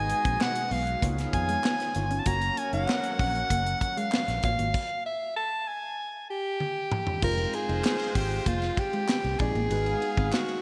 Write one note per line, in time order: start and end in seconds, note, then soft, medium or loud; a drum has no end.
0.00 0.12 G#1 loud
0.00 1.01 B2 medium
0.00 0.74 G#3 medium
0.00 0.99 G#3 medium
0.00 0.69 B3 medium
0.00 0.74 D#4 medium
0.00 0.74 F#4 medium
0.00 1.01 F#4 medium
0.00 0.69 G#4 medium
0.00 0.74 B4 medium
0.00 0.69 D#5 medium
0.00 0.43 G#5 loud
0.10 muted clean electric guitar stroke soft
0.10 closed hi-hat medium
0.25 0.36 A#1 medium
0.25 0.36 C4 medium
0.25 kick loud
0.25 closed hi-hat medium
0.41 0.74 F#5 loud
0.41 snare loud
0.41 clap medium
0.55 closed hi-hat medium
0.71 0.94 B1 medium
0.71 0.82 B3 medium
0.71 1.07 F5 medium
0.71 open hi-hat medium
0.87 closed hi-hat soft
1.01 1.25 C#2 loud
1.01 2.25 D#3 medium
1.01 1.14 A#3 medium
1.01 1.76 B3 medium
1.01 1.93 B3 medium
1.01 2.25 B3 medium
1.01 1.77 D#4 medium
1.01 2.25 F4 medium
1.01 1.77 F4 medium
1.01 1.94 G#4 medium
1.01 1.77 C#5 medium
1.01 1.93 F5 medium
1.01 kick medium
1.01 closed hi-hat loud
1.18 muted clean electric guitar stroke soft
1.18 snare soft
1.18 closed hi-hat medium
1.33 1.56 F2 medium
1.33 2.21 G#5 loud
1.33 kick loud
1.33 closed hi-hat medium
1.48 1.60 G#3 medium
1.48 closed hi-hat medium
1.64 1.75 B3 medium
1.64 snare loud
1.64 clap medium
1.80 snare soft
1.80 closed hi-hat soft
1.95 2.18 G1 medium
1.95 2.19 B3 medium
1.95 2.19 D#4 medium
1.95 2.19 F4 medium
1.95 2.20 C#5 medium
1.95 muted clean electric guitar stroke soft
1.95 closed hi-hat medium
2.11 2.22 C#4 medium
2.11 closed hi-hat medium
2.20 2.28 A5 medium
2.26 2.49 F#1 loud
2.26 4.72 F#3 medium
2.26 3.22 A#3 medium
2.26 4.73 A#3 medium
2.26 4.39 C#4 medium
2.26 3.22 C#4 medium
2.26 2.38 F#4 medium
2.26 3.22 F#4 medium
2.26 4.73 F#4 medium
2.26 4.39 A#4 medium
2.26 3.22 C#5 medium
2.26 4.39 F#5 medium
2.26 2.60 A#5 loud
2.26 kick loud
2.26 closed hi-hat medium
2.42 closed hi-hat medium
2.57 2.73 G#5 loud
2.57 muted clean electric guitar stroke soft
2.57 closed hi-hat medium
2.73 2.84 F#1 loud
2.73 2.85 D#4 medium
2.73 3.17 F#5 loud
2.73 closed hi-hat soft
2.88 snare loud
2.88 clap medium
3.04 closed hi-hat medium
3.19 3.42 A#1 medium
3.19 3.31 C#4 medium
3.19 3.99 F#5 loud
3.19 kick medium
3.19 open hi-hat medium
3.36 closed hi-hat soft
3.50 3.73 F#1 loud
3.50 3.62 A#3 medium
3.50 kick medium
3.50 closed hi-hat loud
3.66 muted clean electric guitar stroke soft
3.66 closed hi-hat medium
3.81 kick medium
3.81 closed hi-hat medium
3.97 4.08 G#3 medium
3.97 4.44 F5 medium
3.97 closed hi-hat medium
4.12 4.24 C4 medium
4.12 snare loud
4.12 clap medium
4.28 4.39 A#1 medium
4.28 muted clean electric guitar stroke soft
4.28 snare soft
4.28 closed hi-hat soft
4.43 4.55 A1 medium
4.43 4.67 A#3 medium
4.43 4.67 F4 medium
4.43 4.67 F#4 medium
4.43 4.68 C#5 medium
4.43 5.02 F5 medium
4.43 kick loud
4.43 closed hi-hat medium
4.59 4.70 G#1 medium
4.59 4.70 A#3 medium
4.59 closed hi-hat medium
4.74 kick loud
4.74 crash medium
5.06 5.35 E5 medium
5.37 5.69 A5 medium
5.68 6.30 G#5 medium
6.30 7.19 G4 loud
6.60 high tom medium
6.92 mid tom medium
7.07 floor tom medium
7.22 7.45 F1 loud
7.22 9.36 G#3 medium
7.22 8.18 G#3 medium
7.22 8.18 C4 medium
7.22 8.18 D#4 medium
7.22 9.36 F4 medium
7.22 7.34 F4 medium
7.22 8.19 F4 medium
7.22 7.56 A#4 loud
7.22 9.36 C5 loud
7.22 8.19 C5 medium
7.22 kick loud
7.22 crash medium
7.38 ride soft
7.53 8.18 G#4 loud
7.53 muted clean electric guitar stroke soft
7.53 ride medium
7.69 7.80 F1 medium
7.69 7.80 D#4 medium
7.69 ride soft
7.84 snare loud
7.84 clap medium
7.84 ride medium
7.99 ride soft
8.15 8.38 G#1 medium
8.15 8.27 C4 medium
8.15 8.49 G4 medium
8.15 kick medium
8.15 open hi-hat medium
8.15 ride medium
8.31 ride soft
8.46 8.69 F1 medium
8.46 8.58 A#3 medium
8.46 8.81 F4 loud
8.46 kick medium
8.46 hi-hat pedal medium
8.46 ride medium
8.62 muted clean electric guitar stroke soft
8.62 snare soft
8.62 ride soft
8.77 9.41 G4 loud
8.77 kick medium
8.77 ride medium
8.93 9.04 G#3 medium
8.93 ride soft
9.09 9.20 C4 medium
9.09 snare loud
9.09 clap medium
9.09 ride medium
9.24 9.36 C2 medium
9.24 muted clean electric guitar stroke soft
9.24 ride soft
9.39 9.51 A#1 medium
9.39 9.64 G#3 medium
9.39 9.64 C4 medium
9.39 9.64 D#4 medium
9.39 9.64 F4 medium
9.39 10.34 G#4 loud
9.39 9.64 D5 medium
9.39 kick loud
9.39 ride medium
9.55 9.66 A1 medium
9.55 9.67 A#3 medium
9.55 ride soft
9.70 9.93 G#1 medium
9.70 9.82 G#3 medium
9.70 10.62 G#3 medium
9.70 10.62 B3 medium
9.70 10.62 D#4 medium
9.70 10.62 F#4 medium
9.70 10.62 G#4 medium
9.70 10.62 B4 medium
9.70 10.62 F5 loud
9.70 ride medium
9.86 ride soft
10.02 muted clean electric guitar stroke soft
10.02 ride medium
10.17 10.29 G#1 loud
10.17 10.29 C4 medium
10.17 kick loud
10.17 ride soft
10.32 10.62 F#4 loud
10.32 snare loud
10.32 clap medium
10.32 ride medium
10.49 ride soft